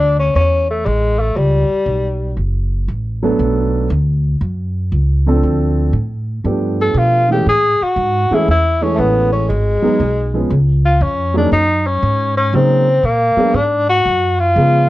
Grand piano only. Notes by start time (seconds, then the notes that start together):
3.22 F#3 A3 B3 D4 A4
5.26 F3 A3 C4 D4 A4
6.44 F3 A3 B3 D4 G4
7.29 E3 G#3 A3 C#4 G#4
8.31 E3 G#3 A3 C#4 G#4
8.81 E3 G#3 A3 C#4 G#4
9.82 F#3 G#3 B3 D#4 G#4
10.34 F3 G#3 B3 C#4 G#4
11.34 F#3 A#3 C#4 D#4 G#4
12.53 F#3 A#3 C#4 D#4 G#4
13.37 F#3 G#3 B3 D4 G#4
14.56 F3 G#3 B3 C#4 G#4